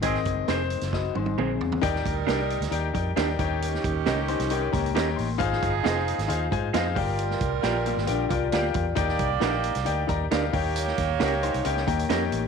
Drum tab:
HH |x-x-x-xx--------|x-x-x-xxx-x-x-x-|x-x-x-xxx-xxx-o-|x-x-x-xxx-x-x-o-|
SD |-o--o--oo-------|-o--o--o----o---|-o--o--o----o---|-o--o--o----o---|
T1 |----------oo----|----------------|----------------|----------------|
T2 |------------o---|----------------|----------------|----------------|
FT |--------------oo|----------------|----------------|----------------|
BD |o-o-----o-------|o-o-------o---o-|--o-------o-----|o-o-------o---o-|

HH |x-x-x-x-x-x-x-x-|x-x-x-xxx-x-x-o-|x-x-x-xxx-xxx-x-|
SD |-o--o--o----o---|-o--o--o----o---|-o--o----o--o---|
T1 |----------------|----------------|----------------|
T2 |----------------|----------------|----------------|
FT |----------------|----------------|----------------|
BD |--o-------o---o-|o-o-------o---o-|--o-------o-----|